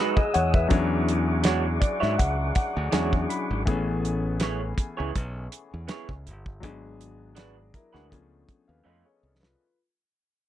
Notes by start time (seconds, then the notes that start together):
Already playing: F#3 G#3 B3 D#4 E4 F#4 G#4 B4 F#5 D#6 E6
0.16 G#4 D#5, kick
0.34 E2 C#5 F#5, closed hi-hat
0.54 B4 E5, kick
0.68 E2 F#3 C#4 D4 E4 G#4 C#6 D6, kick, closed hi-hat
1.08 closed hi-hat
1.44 G#3 D4 F#4 C#5, snare, closed hi-hat
1.80 D5, muted fingered electric bass stroke, kick, closed hi-hat
2.00 G#2 G#3 D4 F#4 C#5 E5, snare
2.18 C#2 F#5, kick, closed hi-hat
2.55 F#5, kick, closed hi-hat
2.77 D2
2.92 E2 F#3 G#3 C#4 D4 E4 F#4 G#4 C#5 G#5, snare, closed hi-hat
3.13 kick
3.29 B5, closed hi-hat
3.50 G#1
3.65 A1 E3 A3 B3 C#4 G#4, kick, closed hi-hat
4.05 closed hi-hat
4.40 B3 E4 G#4 C#5, snare, closed hi-hat
4.78 kick, closed hi-hat
4.97 C#2 B3 E4 G#4 C#5
5.16 B1, kick, closed hi-hat
5.52 closed hi-hat
5.74 E2
5.88 B3 E4 G#4 C#5, snare, closed hi-hat
6.09 C#2, kick
6.26 G1, closed hi-hat
6.46 kick
6.60 G#1 F#3 G#3 B3 D4 G#4, kick, closed hi-hat
7.01 closed hi-hat
7.35 G#3 D4 F#4 G#4 B4 D5, snare, closed hi-hat
7.74 E4 A#4, muted fingered electric bass stroke, kick, closed hi-hat
7.93 D2 G#3 D4 F#4 G#4 B4, snare
8.09 C#2 F3 A3 B3 C#4 G#4, kick, closed hi-hat
8.49 kick, closed hi-hat
8.68 D#2 B4 F5
8.84 F2 A3 C#4 F4 A4 B4 D#5
9.05 G#4 C#5
9.23 C2
9.40 F4 B4, snare